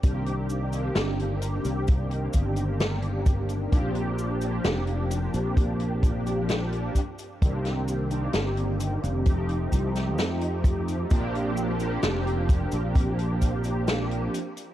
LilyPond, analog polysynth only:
\new Staff \with { instrumentName = "Analog polysynth" } { \time 4/4 \key bes \major \tempo 4 = 65 <ees bes c' d' g'>8. <ees bes c' d' g'>2.~ <ees bes c' d' g'>16 | <f bes c' d' g'>8. <f bes c' d' g'>2~ <f bes c' d' g'>8. r8 | <ees bes c' d' g'>8. <ees bes c' d' g'>4~ <ees bes c' d' g'>16 <f a c' ees' g'>4. r8 | <f bes c' d' g'>8. <f bes c' d' g'>2~ <f bes c' d' g'>8. r8 | }